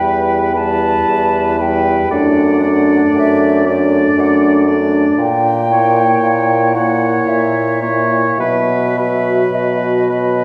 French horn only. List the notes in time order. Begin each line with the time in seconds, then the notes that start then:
Already playing: G3
0.55 G3
1.60 G3
2.10 A3
2.62 A3
3.67 A3
4.67 A3
5.72 A#3
6.75 A#3
7.83 A#3
8.39 F#3
8.98 F#3
10.11 F#3